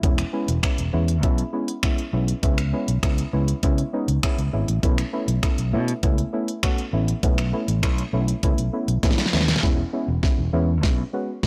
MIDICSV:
0, 0, Header, 1, 4, 480
1, 0, Start_track
1, 0, Tempo, 600000
1, 27, Time_signature, 4, 2, 24, 8
1, 9174, End_track
2, 0, Start_track
2, 0, Title_t, "Synth stab"
2, 0, Program_c, 0, 62
2, 23, Note_on_c, 0, 56, 109
2, 26, Note_on_c, 0, 59, 96
2, 27, Note_on_c, 0, 61, 106
2, 28, Note_on_c, 0, 64, 119
2, 161, Note_off_c, 0, 56, 0
2, 162, Note_off_c, 0, 59, 0
2, 162, Note_off_c, 0, 61, 0
2, 163, Note_off_c, 0, 64, 0
2, 264, Note_on_c, 0, 56, 83
2, 264, Note_on_c, 0, 59, 78
2, 266, Note_on_c, 0, 61, 80
2, 267, Note_on_c, 0, 64, 93
2, 401, Note_off_c, 0, 56, 0
2, 401, Note_off_c, 0, 59, 0
2, 402, Note_off_c, 0, 61, 0
2, 403, Note_off_c, 0, 64, 0
2, 503, Note_on_c, 0, 56, 84
2, 505, Note_on_c, 0, 59, 78
2, 506, Note_on_c, 0, 61, 83
2, 507, Note_on_c, 0, 64, 93
2, 640, Note_off_c, 0, 56, 0
2, 641, Note_off_c, 0, 59, 0
2, 642, Note_off_c, 0, 61, 0
2, 642, Note_off_c, 0, 64, 0
2, 743, Note_on_c, 0, 56, 88
2, 744, Note_on_c, 0, 59, 81
2, 745, Note_on_c, 0, 61, 80
2, 747, Note_on_c, 0, 64, 99
2, 880, Note_off_c, 0, 56, 0
2, 881, Note_off_c, 0, 59, 0
2, 882, Note_off_c, 0, 61, 0
2, 882, Note_off_c, 0, 64, 0
2, 983, Note_on_c, 0, 56, 105
2, 984, Note_on_c, 0, 59, 100
2, 986, Note_on_c, 0, 61, 95
2, 987, Note_on_c, 0, 64, 116
2, 1121, Note_off_c, 0, 56, 0
2, 1121, Note_off_c, 0, 59, 0
2, 1122, Note_off_c, 0, 61, 0
2, 1122, Note_off_c, 0, 64, 0
2, 1222, Note_on_c, 0, 56, 82
2, 1223, Note_on_c, 0, 59, 78
2, 1224, Note_on_c, 0, 61, 79
2, 1226, Note_on_c, 0, 64, 91
2, 1360, Note_off_c, 0, 56, 0
2, 1361, Note_off_c, 0, 59, 0
2, 1361, Note_off_c, 0, 61, 0
2, 1362, Note_off_c, 0, 64, 0
2, 1463, Note_on_c, 0, 56, 108
2, 1464, Note_on_c, 0, 59, 98
2, 1465, Note_on_c, 0, 61, 100
2, 1467, Note_on_c, 0, 64, 123
2, 1600, Note_off_c, 0, 56, 0
2, 1601, Note_off_c, 0, 59, 0
2, 1602, Note_off_c, 0, 61, 0
2, 1602, Note_off_c, 0, 64, 0
2, 1703, Note_on_c, 0, 56, 85
2, 1704, Note_on_c, 0, 59, 78
2, 1705, Note_on_c, 0, 61, 78
2, 1707, Note_on_c, 0, 64, 91
2, 1840, Note_off_c, 0, 56, 0
2, 1841, Note_off_c, 0, 59, 0
2, 1842, Note_off_c, 0, 61, 0
2, 1843, Note_off_c, 0, 64, 0
2, 1941, Note_on_c, 0, 56, 109
2, 1943, Note_on_c, 0, 59, 102
2, 1943, Note_on_c, 0, 61, 98
2, 1946, Note_on_c, 0, 64, 120
2, 2080, Note_off_c, 0, 56, 0
2, 2080, Note_off_c, 0, 59, 0
2, 2081, Note_off_c, 0, 61, 0
2, 2082, Note_off_c, 0, 64, 0
2, 2182, Note_on_c, 0, 56, 85
2, 2183, Note_on_c, 0, 59, 75
2, 2184, Note_on_c, 0, 61, 79
2, 2186, Note_on_c, 0, 64, 97
2, 2320, Note_off_c, 0, 56, 0
2, 2321, Note_off_c, 0, 59, 0
2, 2321, Note_off_c, 0, 61, 0
2, 2322, Note_off_c, 0, 64, 0
2, 2423, Note_on_c, 0, 56, 85
2, 2424, Note_on_c, 0, 59, 83
2, 2426, Note_on_c, 0, 61, 81
2, 2427, Note_on_c, 0, 64, 96
2, 2560, Note_off_c, 0, 56, 0
2, 2561, Note_off_c, 0, 59, 0
2, 2562, Note_off_c, 0, 61, 0
2, 2563, Note_off_c, 0, 64, 0
2, 2664, Note_on_c, 0, 56, 89
2, 2665, Note_on_c, 0, 59, 80
2, 2666, Note_on_c, 0, 61, 83
2, 2668, Note_on_c, 0, 64, 96
2, 2801, Note_off_c, 0, 56, 0
2, 2802, Note_off_c, 0, 59, 0
2, 2802, Note_off_c, 0, 61, 0
2, 2803, Note_off_c, 0, 64, 0
2, 2904, Note_on_c, 0, 56, 106
2, 2906, Note_on_c, 0, 59, 93
2, 2907, Note_on_c, 0, 61, 97
2, 2908, Note_on_c, 0, 64, 115
2, 3041, Note_off_c, 0, 56, 0
2, 3042, Note_off_c, 0, 59, 0
2, 3042, Note_off_c, 0, 61, 0
2, 3043, Note_off_c, 0, 64, 0
2, 3144, Note_on_c, 0, 56, 81
2, 3145, Note_on_c, 0, 59, 74
2, 3147, Note_on_c, 0, 61, 75
2, 3148, Note_on_c, 0, 63, 92
2, 3281, Note_off_c, 0, 56, 0
2, 3282, Note_off_c, 0, 59, 0
2, 3282, Note_off_c, 0, 61, 0
2, 3283, Note_off_c, 0, 63, 0
2, 3384, Note_on_c, 0, 56, 106
2, 3386, Note_on_c, 0, 59, 98
2, 3386, Note_on_c, 0, 61, 98
2, 3387, Note_on_c, 0, 64, 123
2, 3521, Note_off_c, 0, 56, 0
2, 3522, Note_off_c, 0, 59, 0
2, 3522, Note_off_c, 0, 61, 0
2, 3523, Note_off_c, 0, 64, 0
2, 3623, Note_on_c, 0, 56, 88
2, 3624, Note_on_c, 0, 59, 75
2, 3625, Note_on_c, 0, 61, 78
2, 3627, Note_on_c, 0, 64, 94
2, 3761, Note_off_c, 0, 56, 0
2, 3761, Note_off_c, 0, 59, 0
2, 3762, Note_off_c, 0, 61, 0
2, 3763, Note_off_c, 0, 64, 0
2, 3862, Note_on_c, 0, 57, 110
2, 3864, Note_on_c, 0, 59, 107
2, 3865, Note_on_c, 0, 61, 102
2, 3867, Note_on_c, 0, 64, 121
2, 4000, Note_off_c, 0, 57, 0
2, 4001, Note_off_c, 0, 59, 0
2, 4002, Note_off_c, 0, 61, 0
2, 4002, Note_off_c, 0, 64, 0
2, 4103, Note_on_c, 0, 57, 86
2, 4104, Note_on_c, 0, 59, 80
2, 4106, Note_on_c, 0, 61, 82
2, 4108, Note_on_c, 0, 64, 98
2, 4241, Note_off_c, 0, 57, 0
2, 4241, Note_off_c, 0, 59, 0
2, 4242, Note_off_c, 0, 61, 0
2, 4243, Note_off_c, 0, 64, 0
2, 4342, Note_on_c, 0, 57, 87
2, 4344, Note_on_c, 0, 59, 78
2, 4346, Note_on_c, 0, 61, 80
2, 4347, Note_on_c, 0, 64, 96
2, 4480, Note_off_c, 0, 57, 0
2, 4481, Note_off_c, 0, 59, 0
2, 4482, Note_off_c, 0, 61, 0
2, 4482, Note_off_c, 0, 64, 0
2, 4581, Note_on_c, 0, 57, 88
2, 4583, Note_on_c, 0, 59, 79
2, 4585, Note_on_c, 0, 61, 78
2, 4586, Note_on_c, 0, 64, 98
2, 4720, Note_off_c, 0, 57, 0
2, 4721, Note_off_c, 0, 59, 0
2, 4721, Note_off_c, 0, 61, 0
2, 4722, Note_off_c, 0, 64, 0
2, 4822, Note_on_c, 0, 57, 108
2, 4823, Note_on_c, 0, 59, 96
2, 4824, Note_on_c, 0, 61, 96
2, 4826, Note_on_c, 0, 64, 117
2, 4960, Note_off_c, 0, 57, 0
2, 4961, Note_off_c, 0, 59, 0
2, 4961, Note_off_c, 0, 61, 0
2, 4962, Note_off_c, 0, 64, 0
2, 5063, Note_on_c, 0, 57, 81
2, 5064, Note_on_c, 0, 59, 72
2, 5066, Note_on_c, 0, 61, 74
2, 5067, Note_on_c, 0, 64, 92
2, 5200, Note_off_c, 0, 57, 0
2, 5201, Note_off_c, 0, 59, 0
2, 5202, Note_off_c, 0, 61, 0
2, 5203, Note_off_c, 0, 64, 0
2, 5303, Note_on_c, 0, 57, 108
2, 5305, Note_on_c, 0, 59, 99
2, 5306, Note_on_c, 0, 61, 99
2, 5307, Note_on_c, 0, 66, 122
2, 5441, Note_off_c, 0, 57, 0
2, 5441, Note_off_c, 0, 59, 0
2, 5442, Note_off_c, 0, 61, 0
2, 5443, Note_off_c, 0, 66, 0
2, 5544, Note_on_c, 0, 57, 84
2, 5545, Note_on_c, 0, 59, 78
2, 5546, Note_on_c, 0, 61, 78
2, 5548, Note_on_c, 0, 64, 90
2, 5681, Note_off_c, 0, 57, 0
2, 5681, Note_off_c, 0, 59, 0
2, 5682, Note_off_c, 0, 61, 0
2, 5683, Note_off_c, 0, 64, 0
2, 5784, Note_on_c, 0, 57, 106
2, 5784, Note_on_c, 0, 59, 106
2, 5786, Note_on_c, 0, 61, 100
2, 5787, Note_on_c, 0, 64, 123
2, 5921, Note_off_c, 0, 57, 0
2, 5921, Note_off_c, 0, 59, 0
2, 5922, Note_off_c, 0, 61, 0
2, 5923, Note_off_c, 0, 64, 0
2, 6024, Note_on_c, 0, 57, 87
2, 6024, Note_on_c, 0, 59, 80
2, 6027, Note_on_c, 0, 61, 77
2, 6027, Note_on_c, 0, 64, 95
2, 6161, Note_off_c, 0, 57, 0
2, 6161, Note_off_c, 0, 59, 0
2, 6162, Note_off_c, 0, 61, 0
2, 6163, Note_off_c, 0, 64, 0
2, 6263, Note_on_c, 0, 57, 91
2, 6264, Note_on_c, 0, 59, 80
2, 6266, Note_on_c, 0, 61, 82
2, 6267, Note_on_c, 0, 64, 95
2, 6401, Note_off_c, 0, 57, 0
2, 6401, Note_off_c, 0, 59, 0
2, 6402, Note_off_c, 0, 61, 0
2, 6402, Note_off_c, 0, 64, 0
2, 6503, Note_on_c, 0, 57, 84
2, 6504, Note_on_c, 0, 59, 80
2, 6506, Note_on_c, 0, 61, 81
2, 6508, Note_on_c, 0, 64, 96
2, 6640, Note_off_c, 0, 57, 0
2, 6641, Note_off_c, 0, 59, 0
2, 6642, Note_off_c, 0, 61, 0
2, 6643, Note_off_c, 0, 64, 0
2, 6746, Note_on_c, 0, 57, 108
2, 6746, Note_on_c, 0, 59, 94
2, 6748, Note_on_c, 0, 61, 95
2, 6750, Note_on_c, 0, 64, 122
2, 6882, Note_off_c, 0, 57, 0
2, 6882, Note_off_c, 0, 59, 0
2, 6883, Note_off_c, 0, 61, 0
2, 6884, Note_off_c, 0, 64, 0
2, 6984, Note_on_c, 0, 57, 80
2, 6985, Note_on_c, 0, 59, 77
2, 6986, Note_on_c, 0, 61, 76
2, 6988, Note_on_c, 0, 64, 91
2, 7121, Note_off_c, 0, 57, 0
2, 7122, Note_off_c, 0, 59, 0
2, 7122, Note_off_c, 0, 61, 0
2, 7123, Note_off_c, 0, 64, 0
2, 7225, Note_on_c, 0, 57, 104
2, 7227, Note_on_c, 0, 59, 102
2, 7227, Note_on_c, 0, 61, 102
2, 7229, Note_on_c, 0, 64, 123
2, 7362, Note_off_c, 0, 57, 0
2, 7362, Note_off_c, 0, 59, 0
2, 7363, Note_off_c, 0, 61, 0
2, 7364, Note_off_c, 0, 64, 0
2, 7465, Note_on_c, 0, 57, 86
2, 7465, Note_on_c, 0, 59, 78
2, 7467, Note_on_c, 0, 61, 76
2, 7469, Note_on_c, 0, 64, 93
2, 7602, Note_off_c, 0, 57, 0
2, 7602, Note_off_c, 0, 59, 0
2, 7602, Note_off_c, 0, 61, 0
2, 7603, Note_off_c, 0, 64, 0
2, 7705, Note_on_c, 0, 56, 111
2, 7706, Note_on_c, 0, 59, 99
2, 7707, Note_on_c, 0, 61, 99
2, 7709, Note_on_c, 0, 64, 126
2, 7842, Note_off_c, 0, 56, 0
2, 7842, Note_off_c, 0, 59, 0
2, 7843, Note_off_c, 0, 61, 0
2, 7843, Note_off_c, 0, 64, 0
2, 7944, Note_on_c, 0, 56, 87
2, 7944, Note_on_c, 0, 59, 80
2, 7946, Note_on_c, 0, 61, 78
2, 7947, Note_on_c, 0, 64, 95
2, 8081, Note_off_c, 0, 56, 0
2, 8081, Note_off_c, 0, 59, 0
2, 8082, Note_off_c, 0, 61, 0
2, 8083, Note_off_c, 0, 64, 0
2, 8182, Note_on_c, 0, 56, 87
2, 8184, Note_on_c, 0, 59, 80
2, 8185, Note_on_c, 0, 61, 78
2, 8187, Note_on_c, 0, 64, 95
2, 8320, Note_off_c, 0, 56, 0
2, 8321, Note_off_c, 0, 59, 0
2, 8322, Note_off_c, 0, 61, 0
2, 8323, Note_off_c, 0, 64, 0
2, 8422, Note_on_c, 0, 56, 107
2, 8424, Note_on_c, 0, 59, 102
2, 8425, Note_on_c, 0, 61, 103
2, 8426, Note_on_c, 0, 64, 117
2, 8560, Note_off_c, 0, 56, 0
2, 8561, Note_off_c, 0, 59, 0
2, 8562, Note_off_c, 0, 61, 0
2, 8562, Note_off_c, 0, 64, 0
2, 8663, Note_on_c, 0, 56, 82
2, 8665, Note_on_c, 0, 59, 72
2, 8667, Note_on_c, 0, 61, 77
2, 8668, Note_on_c, 0, 64, 89
2, 8801, Note_off_c, 0, 56, 0
2, 8802, Note_off_c, 0, 59, 0
2, 8802, Note_off_c, 0, 61, 0
2, 8803, Note_off_c, 0, 64, 0
2, 8904, Note_on_c, 0, 56, 83
2, 8906, Note_on_c, 0, 59, 73
2, 8907, Note_on_c, 0, 61, 76
2, 8909, Note_on_c, 0, 66, 93
2, 9041, Note_off_c, 0, 56, 0
2, 9042, Note_off_c, 0, 59, 0
2, 9042, Note_off_c, 0, 61, 0
2, 9043, Note_off_c, 0, 66, 0
2, 9145, Note_on_c, 0, 56, 85
2, 9145, Note_on_c, 0, 59, 77
2, 9147, Note_on_c, 0, 61, 79
2, 9149, Note_on_c, 0, 64, 94
2, 9174, Note_off_c, 0, 56, 0
2, 9174, Note_off_c, 0, 59, 0
2, 9174, Note_off_c, 0, 61, 0
2, 9174, Note_off_c, 0, 64, 0
2, 9174, End_track
3, 0, Start_track
3, 0, Title_t, "Fingered electric bass"
3, 0, Program_c, 1, 33
3, 27, Note_on_c, 1, 28, 98
3, 176, Note_off_c, 1, 28, 0
3, 388, Note_on_c, 1, 28, 88
3, 462, Note_off_c, 1, 28, 0
3, 628, Note_on_c, 1, 28, 93
3, 703, Note_off_c, 1, 28, 0
3, 748, Note_on_c, 1, 40, 92
3, 987, Note_off_c, 1, 40, 0
3, 987, Note_on_c, 1, 35, 95
3, 1136, Note_off_c, 1, 35, 0
3, 1706, Note_on_c, 1, 35, 91
3, 1856, Note_off_c, 1, 35, 0
3, 1946, Note_on_c, 1, 37, 94
3, 2170, Note_off_c, 1, 37, 0
3, 2306, Note_on_c, 1, 35, 84
3, 2381, Note_off_c, 1, 35, 0
3, 2423, Note_on_c, 1, 37, 100
3, 2574, Note_off_c, 1, 37, 0
3, 2666, Note_on_c, 1, 37, 82
3, 2816, Note_off_c, 1, 37, 0
3, 2907, Note_on_c, 1, 49, 94
3, 3056, Note_off_c, 1, 49, 0
3, 3264, Note_on_c, 1, 37, 87
3, 3340, Note_off_c, 1, 37, 0
3, 3506, Note_on_c, 1, 37, 91
3, 3581, Note_off_c, 1, 37, 0
3, 3625, Note_on_c, 1, 32, 94
3, 3700, Note_off_c, 1, 32, 0
3, 3745, Note_on_c, 1, 33, 86
3, 3820, Note_off_c, 1, 33, 0
3, 3866, Note_on_c, 1, 35, 111
3, 4016, Note_off_c, 1, 35, 0
3, 4223, Note_on_c, 1, 35, 89
3, 4299, Note_off_c, 1, 35, 0
3, 4465, Note_on_c, 1, 35, 92
3, 4585, Note_on_c, 1, 47, 95
3, 4597, Note_off_c, 1, 35, 0
3, 4735, Note_off_c, 1, 47, 0
3, 4826, Note_on_c, 1, 37, 94
3, 4976, Note_off_c, 1, 37, 0
3, 5545, Note_on_c, 1, 33, 94
3, 5695, Note_off_c, 1, 33, 0
3, 5785, Note_on_c, 1, 35, 98
3, 6010, Note_off_c, 1, 35, 0
3, 6145, Note_on_c, 1, 33, 85
3, 6264, Note_off_c, 1, 33, 0
3, 6264, Note_on_c, 1, 35, 88
3, 6414, Note_off_c, 1, 35, 0
3, 6505, Note_on_c, 1, 35, 89
3, 6655, Note_off_c, 1, 35, 0
3, 6746, Note_on_c, 1, 37, 89
3, 6821, Note_off_c, 1, 37, 0
3, 6866, Note_on_c, 1, 35, 95
3, 6941, Note_off_c, 1, 35, 0
3, 7105, Note_on_c, 1, 35, 83
3, 7180, Note_off_c, 1, 35, 0
3, 7225, Note_on_c, 1, 33, 84
3, 7300, Note_off_c, 1, 33, 0
3, 7466, Note_on_c, 1, 39, 92
3, 7616, Note_off_c, 1, 39, 0
3, 7706, Note_on_c, 1, 28, 99
3, 7856, Note_off_c, 1, 28, 0
3, 8066, Note_on_c, 1, 28, 87
3, 8141, Note_off_c, 1, 28, 0
3, 8306, Note_on_c, 1, 28, 90
3, 8381, Note_off_c, 1, 28, 0
3, 8424, Note_on_c, 1, 40, 92
3, 8667, Note_off_c, 1, 40, 0
3, 8667, Note_on_c, 1, 35, 92
3, 8816, Note_off_c, 1, 35, 0
3, 9174, End_track
4, 0, Start_track
4, 0, Title_t, "Drums"
4, 27, Note_on_c, 9, 36, 113
4, 27, Note_on_c, 9, 42, 66
4, 107, Note_off_c, 9, 36, 0
4, 107, Note_off_c, 9, 42, 0
4, 145, Note_on_c, 9, 26, 62
4, 146, Note_on_c, 9, 42, 52
4, 225, Note_off_c, 9, 26, 0
4, 226, Note_off_c, 9, 42, 0
4, 387, Note_on_c, 9, 42, 56
4, 467, Note_off_c, 9, 42, 0
4, 504, Note_on_c, 9, 36, 102
4, 506, Note_on_c, 9, 26, 107
4, 509, Note_on_c, 9, 42, 59
4, 584, Note_off_c, 9, 36, 0
4, 586, Note_off_c, 9, 26, 0
4, 589, Note_off_c, 9, 42, 0
4, 626, Note_on_c, 9, 42, 59
4, 706, Note_off_c, 9, 42, 0
4, 866, Note_on_c, 9, 42, 49
4, 946, Note_off_c, 9, 42, 0
4, 985, Note_on_c, 9, 42, 63
4, 986, Note_on_c, 9, 36, 108
4, 1065, Note_off_c, 9, 42, 0
4, 1066, Note_off_c, 9, 36, 0
4, 1106, Note_on_c, 9, 42, 48
4, 1186, Note_off_c, 9, 42, 0
4, 1345, Note_on_c, 9, 42, 46
4, 1425, Note_off_c, 9, 42, 0
4, 1463, Note_on_c, 9, 26, 105
4, 1465, Note_on_c, 9, 36, 114
4, 1465, Note_on_c, 9, 42, 61
4, 1543, Note_off_c, 9, 26, 0
4, 1545, Note_off_c, 9, 36, 0
4, 1545, Note_off_c, 9, 42, 0
4, 1587, Note_on_c, 9, 42, 47
4, 1667, Note_off_c, 9, 42, 0
4, 1825, Note_on_c, 9, 42, 51
4, 1905, Note_off_c, 9, 42, 0
4, 1944, Note_on_c, 9, 42, 68
4, 1946, Note_on_c, 9, 36, 113
4, 2024, Note_off_c, 9, 42, 0
4, 2026, Note_off_c, 9, 36, 0
4, 2064, Note_on_c, 9, 26, 62
4, 2065, Note_on_c, 9, 42, 51
4, 2144, Note_off_c, 9, 26, 0
4, 2145, Note_off_c, 9, 42, 0
4, 2305, Note_on_c, 9, 42, 55
4, 2385, Note_off_c, 9, 42, 0
4, 2423, Note_on_c, 9, 36, 106
4, 2425, Note_on_c, 9, 26, 105
4, 2427, Note_on_c, 9, 42, 65
4, 2503, Note_off_c, 9, 36, 0
4, 2505, Note_off_c, 9, 26, 0
4, 2507, Note_off_c, 9, 42, 0
4, 2545, Note_on_c, 9, 42, 56
4, 2625, Note_off_c, 9, 42, 0
4, 2784, Note_on_c, 9, 42, 54
4, 2864, Note_off_c, 9, 42, 0
4, 2904, Note_on_c, 9, 42, 62
4, 2906, Note_on_c, 9, 36, 106
4, 2984, Note_off_c, 9, 42, 0
4, 2986, Note_off_c, 9, 36, 0
4, 3025, Note_on_c, 9, 42, 45
4, 3105, Note_off_c, 9, 42, 0
4, 3266, Note_on_c, 9, 42, 47
4, 3346, Note_off_c, 9, 42, 0
4, 3386, Note_on_c, 9, 26, 106
4, 3386, Note_on_c, 9, 36, 109
4, 3387, Note_on_c, 9, 42, 65
4, 3466, Note_off_c, 9, 26, 0
4, 3466, Note_off_c, 9, 36, 0
4, 3467, Note_off_c, 9, 42, 0
4, 3508, Note_on_c, 9, 42, 46
4, 3588, Note_off_c, 9, 42, 0
4, 3747, Note_on_c, 9, 42, 53
4, 3827, Note_off_c, 9, 42, 0
4, 3866, Note_on_c, 9, 36, 118
4, 3866, Note_on_c, 9, 42, 64
4, 3946, Note_off_c, 9, 36, 0
4, 3946, Note_off_c, 9, 42, 0
4, 3985, Note_on_c, 9, 26, 60
4, 3986, Note_on_c, 9, 42, 52
4, 4065, Note_off_c, 9, 26, 0
4, 4066, Note_off_c, 9, 42, 0
4, 4225, Note_on_c, 9, 42, 55
4, 4305, Note_off_c, 9, 42, 0
4, 4343, Note_on_c, 9, 36, 107
4, 4344, Note_on_c, 9, 26, 104
4, 4346, Note_on_c, 9, 42, 63
4, 4423, Note_off_c, 9, 36, 0
4, 4424, Note_off_c, 9, 26, 0
4, 4426, Note_off_c, 9, 42, 0
4, 4465, Note_on_c, 9, 42, 58
4, 4545, Note_off_c, 9, 42, 0
4, 4705, Note_on_c, 9, 42, 53
4, 4785, Note_off_c, 9, 42, 0
4, 4824, Note_on_c, 9, 42, 64
4, 4826, Note_on_c, 9, 36, 112
4, 4904, Note_off_c, 9, 42, 0
4, 4906, Note_off_c, 9, 36, 0
4, 4945, Note_on_c, 9, 42, 46
4, 5025, Note_off_c, 9, 42, 0
4, 5186, Note_on_c, 9, 42, 45
4, 5266, Note_off_c, 9, 42, 0
4, 5304, Note_on_c, 9, 26, 106
4, 5305, Note_on_c, 9, 36, 114
4, 5306, Note_on_c, 9, 42, 59
4, 5384, Note_off_c, 9, 26, 0
4, 5385, Note_off_c, 9, 36, 0
4, 5386, Note_off_c, 9, 42, 0
4, 5426, Note_on_c, 9, 42, 47
4, 5506, Note_off_c, 9, 42, 0
4, 5666, Note_on_c, 9, 42, 52
4, 5746, Note_off_c, 9, 42, 0
4, 5785, Note_on_c, 9, 42, 69
4, 5786, Note_on_c, 9, 36, 116
4, 5865, Note_off_c, 9, 42, 0
4, 5866, Note_off_c, 9, 36, 0
4, 5905, Note_on_c, 9, 26, 61
4, 5906, Note_on_c, 9, 42, 51
4, 5985, Note_off_c, 9, 26, 0
4, 5986, Note_off_c, 9, 42, 0
4, 6146, Note_on_c, 9, 42, 57
4, 6226, Note_off_c, 9, 42, 0
4, 6264, Note_on_c, 9, 36, 105
4, 6265, Note_on_c, 9, 26, 109
4, 6267, Note_on_c, 9, 42, 64
4, 6344, Note_off_c, 9, 36, 0
4, 6345, Note_off_c, 9, 26, 0
4, 6347, Note_off_c, 9, 42, 0
4, 6386, Note_on_c, 9, 42, 61
4, 6466, Note_off_c, 9, 42, 0
4, 6625, Note_on_c, 9, 42, 52
4, 6705, Note_off_c, 9, 42, 0
4, 6744, Note_on_c, 9, 42, 66
4, 6746, Note_on_c, 9, 36, 108
4, 6824, Note_off_c, 9, 42, 0
4, 6826, Note_off_c, 9, 36, 0
4, 6865, Note_on_c, 9, 42, 48
4, 6945, Note_off_c, 9, 42, 0
4, 7106, Note_on_c, 9, 42, 47
4, 7186, Note_off_c, 9, 42, 0
4, 7225, Note_on_c, 9, 38, 54
4, 7226, Note_on_c, 9, 36, 113
4, 7226, Note_on_c, 9, 42, 64
4, 7285, Note_off_c, 9, 38, 0
4, 7285, Note_on_c, 9, 38, 51
4, 7306, Note_off_c, 9, 36, 0
4, 7306, Note_off_c, 9, 42, 0
4, 7345, Note_off_c, 9, 38, 0
4, 7345, Note_on_c, 9, 38, 67
4, 7346, Note_on_c, 9, 42, 46
4, 7406, Note_off_c, 9, 38, 0
4, 7406, Note_on_c, 9, 38, 59
4, 7426, Note_off_c, 9, 42, 0
4, 7466, Note_off_c, 9, 38, 0
4, 7466, Note_on_c, 9, 38, 85
4, 7525, Note_off_c, 9, 38, 0
4, 7525, Note_on_c, 9, 38, 76
4, 7586, Note_off_c, 9, 38, 0
4, 7586, Note_on_c, 9, 38, 96
4, 7586, Note_on_c, 9, 42, 49
4, 7647, Note_off_c, 9, 38, 0
4, 7647, Note_on_c, 9, 38, 91
4, 7666, Note_off_c, 9, 42, 0
4, 7705, Note_off_c, 9, 38, 0
4, 7705, Note_on_c, 9, 38, 50
4, 7706, Note_on_c, 9, 36, 109
4, 7785, Note_off_c, 9, 38, 0
4, 7786, Note_off_c, 9, 36, 0
4, 8184, Note_on_c, 9, 36, 104
4, 8186, Note_on_c, 9, 38, 53
4, 8264, Note_off_c, 9, 36, 0
4, 8266, Note_off_c, 9, 38, 0
4, 8667, Note_on_c, 9, 36, 108
4, 8667, Note_on_c, 9, 38, 53
4, 8747, Note_off_c, 9, 36, 0
4, 8747, Note_off_c, 9, 38, 0
4, 9146, Note_on_c, 9, 36, 107
4, 9147, Note_on_c, 9, 38, 56
4, 9174, Note_off_c, 9, 36, 0
4, 9174, Note_off_c, 9, 38, 0
4, 9174, End_track
0, 0, End_of_file